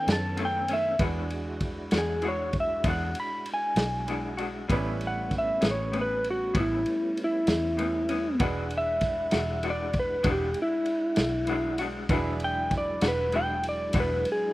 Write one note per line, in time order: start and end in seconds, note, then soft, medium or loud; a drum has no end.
0.00 0.96 D#3 medium
0.00 0.96 B3 medium
0.00 0.96 C#4 medium
0.00 0.96 A4 medium
0.00 0.97 A4 medium
0.00 0.96 C#5 medium
0.07 0.96 F#2 medium
0.07 snare loud
0.07 ride medium
0.12 0.40 A5 medium
0.37 0.56 B2 medium
0.37 0.57 D#3 medium
0.37 0.57 A3 medium
0.37 0.58 C#4 medium
0.37 ride medium
0.45 0.72 G5 loud
0.68 0.89 D#3 soft
0.68 0.88 A3 medium
0.68 0.88 C#4 medium
0.68 ride medium
0.73 1.01 E5 loud
0.99 1.89 E2 medium
0.99 1.19 E3 medium
0.99 4.67 G#3 medium
0.99 1.19 G#3 medium
0.99 4.66 D4 medium
0.99 1.19 D4 medium
0.99 4.66 E4 medium
0.99 4.66 F#4 medium
0.99 4.66 F#4 soft
0.99 1.19 F#4 medium
0.99 4.66 G#4 soft
0.99 4.66 B4 medium
0.99 kick loud
0.99 ride medium
1.30 ride medium
1.60 kick medium
1.60 ride medium
1.91 2.81 E2 medium
1.91 2.12 G#3 soft
1.91 2.12 D4 soft
1.91 2.11 F#4 medium
1.91 snare loud
1.91 ride medium
1.98 2.25 G#4 medium
2.22 2.41 E3 medium
2.22 2.42 G#3 medium
2.22 2.42 D4 medium
2.22 2.43 F#4 medium
2.22 ride medium
2.28 2.56 C#5 loud
2.53 kick medium
2.53 ride medium
2.60 2.87 E5 medium
2.84 3.13 E2 loud
2.84 3.03 E3 medium
2.84 3.04 G#3 medium
2.84 3.04 D4 medium
2.84 3.05 F#4 medium
2.84 kick loud
2.84 ride medium
2.90 3.18 F#5 medium
3.15 ride medium
3.20 3.48 B5 medium
3.46 ride medium
3.54 4.70 G#5 loud
3.76 4.65 B1 medium
3.76 snare loud
3.76 ride medium
4.08 4.27 E3 soft
4.08 4.27 G#3 medium
4.08 4.28 D4 medium
4.08 4.28 F#4 soft
4.08 ride medium
4.37 4.58 G#3 medium
4.37 4.58 D4 medium
4.37 4.57 F#4 medium
4.37 ride medium
4.68 5.59 A1 loud
4.68 4.88 A2 medium
4.68 4.88 G3 medium
4.68 8.36 G3 medium
4.68 8.37 G3 medium
4.68 8.37 A3 medium
4.68 4.88 B3 medium
4.68 8.37 B3 medium
4.68 4.88 C#4 loud
4.68 8.37 C#4 medium
4.68 8.37 E4 medium
4.68 8.37 B4 medium
4.68 kick loud
4.68 ride medium
5.01 ride medium
5.07 5.34 F#5 medium
5.31 kick medium
5.31 snare soft
5.31 ride medium
5.38 5.65 E5 medium
5.61 6.51 A1 medium
5.61 5.82 G3 soft
5.61 5.81 B3 soft
5.61 5.80 C#4 medium
5.61 snare loud
5.61 ride medium
5.71 5.97 C#5 medium
5.92 6.11 A2 medium
5.92 6.12 G3 medium
5.92 6.12 B3 medium
5.92 6.12 C#4 medium
5.92 ride medium
6.01 6.28 B4 loud
6.24 ride medium
6.30 6.58 F#4 loud
6.54 6.84 A1 medium
6.54 6.73 A2 medium
6.54 6.74 G3 medium
6.54 6.74 B3 medium
6.54 6.74 C#4 medium
6.54 kick loud
6.54 ride medium
6.60 7.18 E4 loud
6.86 ride medium
7.17 ride medium
7.24 8.40 E4 loud
7.47 8.36 E2 medium
7.47 snare loud
7.47 ride medium
7.77 7.96 A2 medium
7.77 7.97 G3 medium
7.77 7.97 B3 medium
7.77 7.97 C#4 medium
7.77 ride medium
8.09 8.29 G3 soft
8.09 8.28 B3 medium
8.09 8.28 C#4 medium
8.09 ride medium
8.39 9.29 E1 medium
8.39 8.58 E3 medium
8.39 8.59 G#3 loud
8.39 12.07 G#3 medium
8.39 12.07 D4 medium
8.39 8.59 D4 medium
8.39 12.08 D4 medium
8.39 12.07 E4 medium
8.39 8.59 F#4 loud
8.39 12.06 B4 medium
8.39 12.07 F#5 medium
8.39 kick loud
8.39 ride medium
8.70 ride medium
8.78 9.64 E5 loud
9.01 kick medium
9.01 snare soft
9.01 ride medium
9.31 10.22 E1 medium
9.31 9.52 G#3 soft
9.31 9.52 D4 soft
9.31 9.51 F#4 medium
9.31 snare loud
9.31 ride medium
9.63 9.82 E3 medium
9.63 9.82 G#3 medium
9.63 9.83 D4 medium
9.63 9.83 F#4 medium
9.63 ride medium
9.70 9.97 D5 medium
9.93 kick medium
9.93 ride medium
10.00 10.27 B4 medium
10.23 10.54 E1 medium
10.23 10.43 E3 medium
10.23 10.43 G#3 medium
10.23 10.43 D4 medium
10.23 10.44 F#4 medium
10.23 kick loud
10.23 ride medium
10.31 10.59 G4 medium
10.54 ride medium
10.62 11.79 E4 loud
10.86 ride medium
11.16 12.06 B1 medium
11.16 snare loud
11.16 ride medium
11.47 11.67 E3 medium
11.47 11.68 G#3 medium
11.47 11.68 D4 medium
11.47 11.68 F#4 medium
11.47 ride medium
11.78 11.99 G#3 medium
11.78 11.99 D4 medium
11.78 11.98 F#4 medium
11.78 ride medium
12.09 12.99 E1 medium
12.09 12.29 E3 medium
12.09 14.53 F#3 medium
12.09 12.29 G#3 medium
12.09 14.53 G#3 medium
12.09 12.29 D4 medium
12.09 14.53 D4 medium
12.09 14.53 E4 medium
12.09 12.29 F#4 loud
12.09 14.53 G#4 medium
12.09 14.53 B4 medium
12.09 kick loud
12.09 ride medium
12.40 ride medium
12.44 12.73 G5 loud
12.71 kick medium
12.71 snare soft
12.71 ride medium
12.78 13.05 D5 medium
13.01 13.91 E1 medium
13.01 13.22 G#3 soft
13.01 13.22 D4 soft
13.01 13.21 F#4 medium
13.01 snare loud
13.01 ride medium
13.08 13.36 B4 medium
13.32 13.52 E3 medium
13.32 13.52 G#3 medium
13.32 13.53 D4 medium
13.32 13.53 F#4 medium
13.32 13.65 G5 loud
13.32 ride medium
13.63 ride medium
13.69 13.97 D5 medium
13.93 14.23 E1 loud
13.93 14.14 E3 medium
13.93 14.14 G#3 medium
13.93 14.14 D4 medium
13.93 14.14 F#4 medium
13.93 kick loud
13.93 ride medium
14.00 14.28 B4 medium
14.25 ride medium
14.32 14.53 G#4 loud